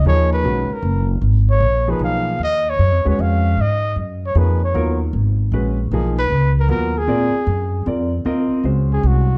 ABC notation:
X:1
M:3/4
L:1/8
Q:"Swing" 1/4=154
K:G#dor
V:1 name="Trumpet"
c B2 A2 z | z c2 B e2 | d c2 c e2 | d2 z c B c- |
c z4 z | z B2 A A G- | G4 z2 | [K:Ebdor] z3 A G2 |]
V:2 name="Grand piano"
[E,A,DG]2 [D,G,CF] z3 | z3 [E,A,DG]3 | z3 [G,CFB]3 | z4 [E,A,DG] z |
[F,B,EA] z3 [G,CFB] z | [E,A,DG] z3 [F,B,EA] z | [^B,EA=d] z3 [B,EAd] z | [K:Ebdor] [CFBe]2 [A,DGc]3 z |]
V:3 name="Upright bass" clef=bass
D,,2 B,,, z F,,,2 | G,,,2 A,,,2 B,,,2 | D,,2 (3F,, E,, D,, E,,2 | G,,2 F,,2 E,,2 |
D,,2 G,,,2 A,,,2 | B,,,2 C,,2 D,,2 | A,, z F,,2 E,,2 | [K:Ebdor] E,, z D,,2 C,,2 |]